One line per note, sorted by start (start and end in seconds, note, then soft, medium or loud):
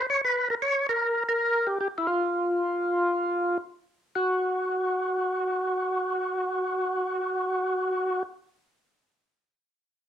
0.01 0.07 C5 medium
0.10 0.21 C#5 medium
0.25 0.48 B4 medium
0.50 0.55 A#4 medium
0.62 0.87 C#5 medium
0.89 1.23 A#4 medium
1.29 1.68 A#4 medium
1.67 1.78 G4 medium
1.81 1.88 G4 medium
1.98 2.07 E4 soft
2.07 3.58 F4 medium
4.16 8.23 F#4 medium